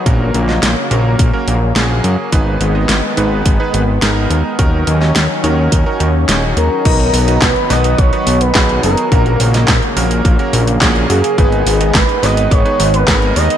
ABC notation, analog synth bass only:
X:1
M:4/4
L:1/8
Q:1/4=106
K:G#m
V:1 name="Analog synth bass" clef=bass
A,,, A,,, A,,, A,,, A,,, A,,, A,,, F,, | G,,, G,,, G,,, G,,, G,,, G,,, G,,, D,, | D,, D,, D,, D,, D,, D,, D,,, D,, | B,,, B,,, B,,, B,,, B,,, B,,, B,,, F,,, |
A,,, A,,, A,,, A,,, A,,, A,,, A,,, F,, | G,,, G,,, G,,, G,,, G,,, G,,, G,,, D,, |]